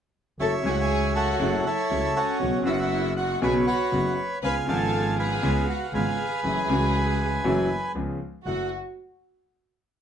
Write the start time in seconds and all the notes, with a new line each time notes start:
0.39 F#1 F#2 C#3 F#3 A3 E4 A4 C#5 E5 A5
0.63 C#2 C#3 F#3 A3 E4 G#4 G#5
0.71 F#4 F#5
0.81 G#4 G#5
1.15 F#4 A4 C#5 F#5
1.39 F#1 F#2 C#3 F#3 A3 E4
1.66 E4 A4 C#5 E5
1.91 C#2 C#3 F#3 A3 E4
2.16 C#4 F#4 C#5
2.40 B1 B2 C#3 F#3 B3 F#4
2.63 F#1 F#2 C#3 F#3 B3 E4 F#4 E5
2.73 F#4 F#5
2.79 E4 E5
3.16 F#4 F#5
3.42 B1 B2 C#3 F#3 B3 F#4 G#4 B4 C#5 G#5
3.67 F#4 B4 C#5 F#5
3.91 F#1 F#2 C#3 F#3 B3 F#4
4.42 C#2 C#3 G#3 B3 F4 B4 F5 G#5 B5
4.66 G#1 G#2 C#3 F3 B3 A4 F5 A5
4.70 F4
5.17 G#4 B4 F5 G#5
5.42 C#2 C#3 G#3 B3 F4
5.68 F#4 F#5
5.93 G#1 G#2 C#3 G#3 B3 F4 G#4 B4 F5 G#5
6.43 F#1 F#2 E3 F#3 A3 C#4 F#4
6.67 C#2 C#3 E3 A3 C#4
6.71 F#4
7.44 F#1 F#2 E3 F#3 A3 C#4 F#4
7.95 C#2 C#3 F3 B3 C#4 G#4
8.46 F#1 F#2 A3 E4 F#4 F#5